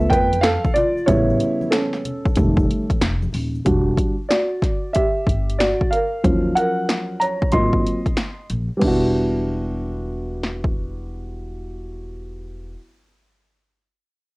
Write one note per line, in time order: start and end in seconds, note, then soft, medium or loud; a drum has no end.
0.00 0.25 F3 medium
0.00 0.25 A3 soft
0.00 0.26 B3 medium
0.00 0.11 E5 loud
0.00 shaker soft
0.09 0.56 F2 loud
0.09 0.41 B4 medium
0.09 0.40 G5 loud
0.09 kick medium
0.09 closed hi-hat medium
0.09 shaker soft
0.32 closed hi-hat medium
0.32 high conga medium
0.32 shaker soft
0.41 0.73 A4 medium
0.41 0.75 F5 loud
0.41 snare loud
0.41 closed hi-hat loud
0.41 shaker medium
0.64 kick medium
0.64 high conga medium
0.64 shaker soft
0.74 1.06 F4 medium
0.74 1.05 D5 medium
0.74 closed hi-hat medium
0.74 low conga medium
0.74 shaker soft
0.97 shaker soft
1.06 1.35 A1 loud
1.06 2.00 C#3 medium
1.06 2.00 G3 medium
1.06 2.01 B3 medium
1.06 1.69 E4 medium
1.06 1.74 C#5 loud
1.06 kick loud
1.06 closed hi-hat loud
1.06 shaker medium
1.30 shaker soft
1.40 closed hi-hat medium
1.40 high conga soft
1.40 shaker soft
1.61 high conga medium
1.61 shaker soft
1.71 2.98 C#4 medium
1.71 2.97 A4 medium
1.71 snare loud
1.71 closed hi-hat loud
1.71 shaker medium
1.93 snare soft
1.93 shaker soft
2.05 closed hi-hat medium
2.05 low conga medium
2.05 shaker soft
2.26 kick loud
2.26 shaker soft
2.36 2.65 F1 loud
2.36 2.83 D#3 medium
2.36 2.83 G3 soft
2.36 2.84 A3 medium
2.36 kick loud
2.36 closed hi-hat loud
2.36 high conga soft
2.36 low conga medium
2.36 shaker medium
2.57 kick loud
2.57 shaker medium
2.70 closed hi-hat medium
2.70 shaker soft
2.90 kick medium
2.90 closed hi-hat soft
2.90 high conga medium
2.90 shaker soft
3.01 3.29 F1 medium
3.01 snare loud
3.01 closed hi-hat medium
3.01 shaker medium
3.22 high conga medium
3.22 shaker soft
3.33 3.62 D#1 medium
3.33 open hi-hat medium
3.33 low conga medium
3.33 shaker medium
3.55 shaker soft
3.65 3.93 E1 loud
3.65 4.12 G3 medium
3.65 4.12 D4 soft
3.65 4.13 F#4 medium
3.65 kick loud
3.65 closed hi-hat medium
3.98 kick medium
3.98 closed hi-hat medium
4.29 4.91 F#4 medium
4.29 4.96 D5 medium
4.29 snare loud
4.29 closed hi-hat medium
4.62 kick medium
4.62 snare soft
4.62 closed hi-hat medium
4.93 5.56 G4 medium
4.93 5.60 E5 medium
4.93 kick medium
4.93 closed hi-hat medium
5.26 5.72 G1 medium
5.26 kick medium
5.26 closed hi-hat medium
5.50 closed hi-hat soft
5.59 5.90 F#4 medium
5.59 5.92 D5 medium
5.59 snare loud
5.59 closed hi-hat loud
5.81 kick medium
5.91 6.53 A#4 medium
5.91 6.58 F5 medium
5.91 closed hi-hat medium
6.23 6.52 D#2 loud
6.23 7.49 F3 medium
6.23 7.49 F#3 medium
6.23 7.49 C#4 soft
6.23 kick loud
6.23 closed hi-hat medium
6.55 7.17 A#4 medium
6.55 7.22 F#5 medium
6.55 closed hi-hat medium
6.89 snare loud
6.89 closed hi-hat loud
7.20 7.51 C#5 medium
7.20 7.54 A#5 medium
7.20 closed hi-hat medium
7.42 kick medium
7.52 7.81 G#1 medium
7.52 7.99 F#3 soft
7.52 8.00 A#3 soft
7.52 8.00 C4 soft
7.52 8.00 F4 medium
7.52 8.46 D#5 medium
7.52 8.45 C6 medium
7.52 kick medium
7.52 closed hi-hat medium
7.73 kick medium
7.87 closed hi-hat medium
8.06 kick medium
8.06 closed hi-hat soft
8.17 snare loud
8.17 closed hi-hat medium
8.50 8.68 A#1 medium
8.50 closed hi-hat medium
8.77 12.68 G3 medium
8.77 12.71 B3 medium
8.82 12.73 E1 medium
8.82 12.73 D4 medium
8.82 12.76 E4 medium
8.82 kick medium
8.82 crash medium
8.88 12.79 F#4 medium
10.43 snare soft
10.64 kick medium